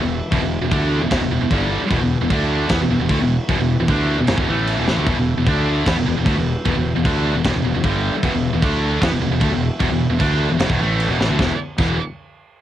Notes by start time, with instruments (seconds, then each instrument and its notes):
Already playing: pipe organ E3 B3 E4 G4
0.02 fingered electric bass E1, distorted electric guitar E2 B2
0.32 fingered electric bass E1, distorted electric guitar E2 B2, kick, crash
0.43 fingered electric bass E1, distorted electric guitar E2 B2
0.62 fingered electric bass E1, distorted electric guitar E2 B2
0.71 fingered electric bass D2, distorted electric guitar D3 A3 D4, kick, crash
1.02 fingered electric bass E1, distorted electric guitar E2 B2
1.11 fingered electric bass E1, distorted electric guitar E2 B2, kick, snare, crash
1.20 fingered electric bass E1, distorted electric guitar E2 B2
1.31 fingered electric bass E1, distorted electric guitar E2 B2
1.41 fingered electric bass E1, distorted electric guitar E2 B2
1.51 fingered electric bass G1, distorted electric guitar G2 D3 G3, kick, crash
1.82 muted distorted electric guitar stroke, muted fingered electric bass stroke
1.90 fingered electric bass E1, distorted electric guitar E2 B2, kick, crash
2.01 fingered electric bass E1, distorted electric guitar E2 B2
2.21 fingered electric bass E1, distorted electric guitar E2 B2
2.30 fingered electric bass D2, pipe organ D3 A3 D5, distorted electric guitar D3 A3 D4, kick, crash
2.69 fingered electric bass E2, distorted electric guitar E3 B3, pipe organ E3 B3 G4, kick, snare, crash
2.80 fingered electric bass E1, distorted electric guitar E2 B2
2.90 fingered electric bass E1, distorted electric guitar E2 B2
3.00 fingered electric bass E1, distorted electric guitar E2 B2
3.09 fingered electric bass D2, distorted electric guitar D3 A3, kick, crash
3.19 fingered electric bass E1, distorted electric guitar E2 B2
3.49 fingered electric bass E1, distorted electric guitar E2 B2, kick, crash
3.59 fingered electric bass E1, distorted electric guitar E2 B2
3.80 fingered electric bass E1, distorted electric guitar E2 B2
3.88 fingered electric bass D2, distorted electric guitar D3 A3 D4, kick, crash
4.18 fingered electric bass E1, distorted electric guitar E2 B2
4.27 fingered electric bass F#1, distorted electric guitar F#2 C#3, snare, crash
4.38 fingered electric bass E1, distorted electric guitar E2 B2, kick
4.48 fingered electric bass A1, distorted electric guitar A2 E3 A3
4.67 crash
4.78 fingered electric bass E1, distorted electric guitar E2 B2
4.87 fingered electric bass A1, distorted electric guitar A2 E3, snare
4.97 fingered electric bass D2, distorted electric guitar D3 A3
5.06 fingered electric bass E1, distorted electric guitar E2 B2, kick, crash
5.17 fingered electric bass E1, distorted electric guitar E2 B2
5.37 fingered electric bass E1, distorted electric guitar E2 B2
5.47 fingered electric bass D2, distorted electric guitar D3 A3 D4, pipe organ D3 A3 D5, kick, crash
5.86 fingered electric bass E2, distorted electric guitar E3 B3, pipe organ E3 B3 G4, kick, snare, crash
5.96 fingered electric bass E1, distorted electric guitar E2 B2
6.07 fingered electric bass E1, distorted electric guitar E2 B2
6.18 fingered electric bass E1, distorted electric guitar E2 B2
6.26 fingered electric bass D2, distorted electric guitar D3 A3, kick, crash
6.36 fingered electric bass E1, distorted electric guitar E2 B2
6.65 fingered electric bass E1, distorted electric guitar E2 B2, kick, crash
6.76 fingered electric bass E1, distorted electric guitar E2 B2
6.96 fingered electric bass E1, distorted electric guitar E2 B2
7.05 fingered electric bass D2, distorted electric guitar D3 A3 D4, kick, crash
7.35 fingered electric bass E1, distorted electric guitar E2 B2
7.44 fingered electric bass E1, distorted electric guitar E2 B2, kick, snare, crash
7.55 fingered electric bass E1, distorted electric guitar E2 B2
7.64 fingered electric bass E1, distorted electric guitar E2 B2
7.74 fingered electric bass E1, distorted electric guitar E2 B2
7.84 fingered electric bass G1, distorted electric guitar G2 D3 G3, kick, crash
8.15 muted fingered electric bass stroke, muted distorted electric guitar stroke
8.23 fingered electric bass E1, distorted electric guitar E2 B2, kick, crash
8.33 fingered electric bass E1, distorted electric guitar E2 B2
8.53 fingered electric bass E1, distorted electric guitar E2 B2
8.62 fingered electric bass D2, distorted electric guitar D3 A3 D4, pipe organ D3 A3 E4 D5, kick, crash
9.01 fingered electric bass E2, distorted electric guitar E3 B3, pipe organ E3 B3 G4, kick, snare, crash
9.11 fingered electric bass E1, distorted electric guitar E2 B2
9.21 fingered electric bass E1, distorted electric guitar E2 B2
9.30 fingered electric bass E1, distorted electric guitar E2 B2
9.40 fingered electric bass D2, distorted electric guitar D3 A3, kick, crash
9.50 fingered electric bass E1, distorted electric guitar E2 B2
9.80 fingered electric bass E1, distorted electric guitar E2 B2, kick, crash
9.90 fingered electric bass E1, distorted electric guitar E2 B2
10.10 fingered electric bass E1, distorted electric guitar E2 B2
10.19 fingered electric bass D2, distorted electric guitar D3 A3 D4, kick, crash
10.48 fingered electric bass E1, distorted electric guitar E2 B2
10.59 fingered electric bass F#1, distorted electric guitar F#2 C#3, snare, crash
10.69 fingered electric bass E1, distorted electric guitar E2 B2, kick
10.79 fingered electric bass A1, distorted electric guitar A2 E3 A3
11.00 crash
11.09 fingered electric bass E1, distorted electric guitar E2 B2
11.19 fingered electric bass A1, distorted electric guitar A2 E3, snare
11.29 fingered electric bass D2, distorted electric guitar D3 A3
11.39 fingered electric bass E1, distorted electric guitar E2 B2 E3, pipe organ E3 B3 E4 G4, kick, snare
11.78 fingered electric bass E1, distorted electric guitar E2 B2 E3, kick, crash